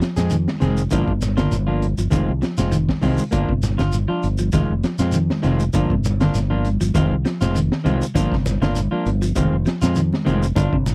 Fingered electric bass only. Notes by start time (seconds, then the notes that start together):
0.17 F2
0.62 F1
0.92 G1
1.07 G1
1.51 G1
1.98 G1
2.12 F1
2.28 C2
2.59 F1
3.03 C2
3.33 G1
3.49 G1
3.80 G1
4.24 G1
4.53 F1
4.70 F1
5.00 F2
5.44 F1
5.74 G1
5.90 G1
6.35 G1
6.81 G1
6.95 F1
7.11 C2
7.42 F1
7.86 C2
8.15 G1
8.32 G1
8.61 G1
8.92 muted fingered electric bass stroke
9.06 G1
9.36 F1
9.52 F1
9.83 F2
10.27 F1
10.56 G1
10.73 G1